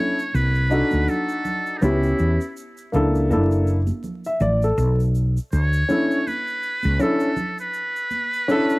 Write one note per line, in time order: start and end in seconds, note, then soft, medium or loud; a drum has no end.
0.00 0.14 C#4 medium
0.00 0.15 D4 medium
0.00 0.15 E4 medium
0.00 0.16 A4 medium
0.00 0.36 C#5 loud
0.19 shaker soft
0.34 0.81 C2 medium
0.34 1.10 B4 loud
0.34 high conga soft
0.34 shaker medium
0.55 shaker soft
0.70 1.76 D4 medium
0.70 1.76 D#4 medium
0.70 1.76 F#4 medium
0.70 1.77 A4 medium
0.70 shaker soft
0.91 1.05 D2 medium
0.91 high conga medium
0.91 shaker soft
1.08 1.79 A4 medium
1.08 low conga medium
1.08 shaker medium
1.29 shaker soft
1.45 low conga medium
1.45 shaker medium
1.66 shaker soft
1.77 2.36 B3 medium
1.77 1.84 D#4 medium
1.82 2.12 C#2 loud
1.82 2.37 C#4 medium
1.82 2.56 E4 medium
1.82 2.37 E4 medium
1.82 2.38 G4 medium
1.82 shaker medium
2.03 shaker soft
2.19 2.37 E2 medium
2.19 shaker soft
2.41 shaker soft
2.57 shaker medium
2.77 shaker soft
2.92 3.32 C#2 medium
2.92 3.28 A#3 medium
2.92 3.29 D4 medium
2.92 3.30 E4 medium
2.92 3.31 A4 medium
2.92 high conga medium
2.92 low conga medium
2.92 shaker soft
3.15 shaker soft
3.29 3.90 F#1 loud
3.29 3.76 A#3 medium
3.29 3.76 D4 medium
3.29 3.77 E4 medium
3.29 3.69 A4 medium
3.29 high conga soft
3.29 shaker medium
3.51 shaker soft
3.67 shaker soft
3.87 high conga medium
3.87 shaker soft
4.04 low conga medium
4.04 shaker medium
4.25 4.41 E5 medium
4.25 shaker soft
4.40 4.71 A1 medium
4.40 4.62 D5 medium
4.40 low conga medium
4.40 shaker soft
4.62 4.99 A4 medium
4.62 shaker soft
4.78 5.38 B1 loud
4.78 shaker medium
5.00 shaker soft
5.15 shaker soft
5.37 shaker soft
5.52 5.83 D2 medium
5.52 6.29 C#5 loud
5.52 shaker medium
5.73 shaker medium
5.89 6.17 C#4 medium
5.89 6.17 D4 medium
5.89 6.18 E4 medium
5.89 6.19 A4 medium
5.89 high conga medium
5.89 low conga medium
5.89 shaker soft
6.11 shaker soft
6.27 7.02 B4 loud
6.27 high conga soft
6.27 shaker medium
6.47 shaker soft
6.63 shaker soft
6.83 6.98 C#2 medium
6.83 high conga medium
6.83 shaker soft
6.99 7.28 C#4 medium
6.99 7.29 D4 medium
6.99 7.29 E4 medium
6.99 7.59 A4 medium
6.99 7.30 A4 medium
6.99 low conga medium
6.99 shaker medium
7.20 shaker soft
7.37 low conga medium
7.37 shaker soft
7.58 8.79 B4 loud
7.58 shaker soft
7.74 shaker medium
7.96 shaker soft
8.11 high conga soft
8.11 shaker medium
8.33 shaker soft
8.48 8.79 C#4 medium
8.48 8.79 D4 medium
8.48 8.79 E4 medium
8.48 8.79 A4 loud
8.48 shaker medium
8.70 shaker medium